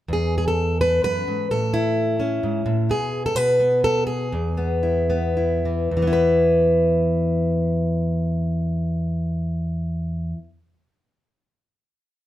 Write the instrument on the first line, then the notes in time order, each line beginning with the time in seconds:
steel-string acoustic guitar
0.08 E2
0.13 G#4
0.38 G#4
0.48 A4
0.81 B4
1.03 F#2 B4
1.27 G#2
1.51 A2 A4
1.74 E4
2.20 C#4
2.43 G#2
2.66 A2
2.89 B2 G#4
3.26 A4
3.35 B2 B4
3.60 B3
3.84 A4
4.07 G#4
4.32 E2
4.57 B3
4.83 E4
5.10 B3
5.37 E4
5.65 E3
5.91 E2
5.97 E3
6.02 B3
6.07 E4
6.13 B4